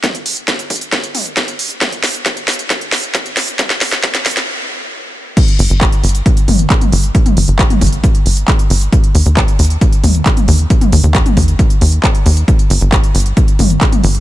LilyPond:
<<
  \new Staff \with { instrumentName = "Analog synth bass" } { \clef bass \time 4/4 \key ees \lydian \tempo 4 = 135 r1 | r1 | r1 | r8 g,,16 g,,8 r16 g,,8 r8 g,,8 r8 g,,8 |
r8 g,,16 g,,8 r16 g,,8 r8 g,,8 r8 g,,8 | r8 ees,16 ees,8 r16 ees,8 r8 ees,8 r8 ees,8 | r8 ees,16 ees,8 r16 ees,8 r8 ees,8 r8 ees,8 | r8 g,,16 g,,8 r16 g,,8 r8 g,,8 r8 g,,8 | }
  \new DrumStaff \with { instrumentName = "Drums" } \drummode { \time 4/4 <hh bd sn toml>16 hh16 hho16 hh16 <hh bd sn>16 hh16 <hho bd>32 hh32 hh16 <hh bd sn>16 hh16 <hho toml>16 hh16 <hh bd sn>16 hh16 hho16 hh16 | <hh bd sn toml>16 hh16 <hho sn>16 hh16 <hh bd sn>16 hh16 <hho sn>32 hh32 hh16 <hh bd sn>16 hh16 <hho sn>16 hh16 <hh bd sn>16 hh16 <hho sn>16 hh16 | <hh bd sn toml>16 <hh sn>16 <hho sn>16 sn16 <hh bd sn>16 <hh sn>16 <hho bd sn>32 hh32 <hh sn>16 r4 r4 | <cymc hh bd>16 hh16 hho16 hh16 <hc hh bd>16 hh16 hho32 hh32 hh16 <hh bd>16 hh16 <hho toml>16 hh16 <hc hh bd>16 <hh toml>16 hho16 hh16 |
<hh bd>16 <hh toml>16 hho16 hh16 <hc hh bd>16 <hh toml>16 <hho bd>32 hh32 hh16 <hh bd>16 hh16 hho16 hh16 <hc hh bd>16 hh16 hho16 hh16 | <hh bd>16 hh16 hho16 hh16 <hc hh bd>16 hh16 hho32 hh32 hh16 <hh bd>16 hh16 <hho toml>16 hh16 <hc hh bd>16 <hh toml>16 hho16 hh16 | <hh bd>16 <hh toml>16 hho16 hh16 <hc hh bd>16 <hh toml>16 <hho bd>32 hh32 hh16 <hh bd>16 hh16 hho16 hh16 <hc hh bd>16 hh16 hho16 hh16 | <hh bd>16 hh16 hho16 hh16 <hc hh bd>16 hh16 hho32 hh32 hh16 <hh bd>16 hh16 <hho toml>16 hh16 <hc hh bd>16 <hh toml>16 hho16 hh16 | }
>>